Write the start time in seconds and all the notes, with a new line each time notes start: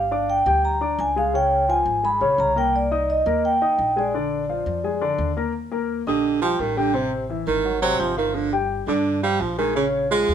Already playing: G1 F5
0.11 D4 D5 D6
0.30 G5
0.46 D2 G3 G4 G5
0.65 A#5
0.81 D4 D5 D6
0.99 C#2 G#5
1.16 G#3 G#4 F5 G#5
1.34 C#3 C#4 C#5 G5
1.69 F3 F4 F5 G#5
1.86 G#1
2.03 G#3 G#4 G#5 B5
2.21 A#1 C#3 C#4 C#5
2.38 C2 A#5
2.56 A#3 A#4 G5 A#5
2.76 D5
2.91 D#4 D#5 D#6
3.10 D#5
3.26 D#2 A#3 A#4 A#5
3.45 G5
3.62 D#4 D#5 D#6
3.79 A#1
3.96 G#3 G#4 D5 G#5
4.14 D3 D4 D5
4.49 F3 F4 F5
4.66 F2
4.84 G#3 G#4 G#5
5.01 D3 D4 D5
5.18 D#2
5.37 A#3 A#4 A#5
5.72 A#3 A#4 A#5
6.07 A#1 D3 G4 D#5 D#6
6.42 F3 G3 G4 G5
6.59 A1 D#3
6.77 D3 G3 G4 G5
6.94 C3 C4 C5
7.30 E3 E4 E5
7.47 G#1 D#3
7.65 F#3 F#4 F#5
7.82 C3 F#3 C4 C5
8.00 G1 F3
8.17 D#3 F3 F4 F5
8.35 D3
8.52 G3 G4 G5
8.87 G2 D3 D4 D5 D6
9.23 F3 G3 F4 F5
9.40 A#1 F3
9.58 D#3 G#3 G#4 G#5
9.75 C#3 C#4 C#5
10.10 F3 G#3 F4 F5
10.28 D#2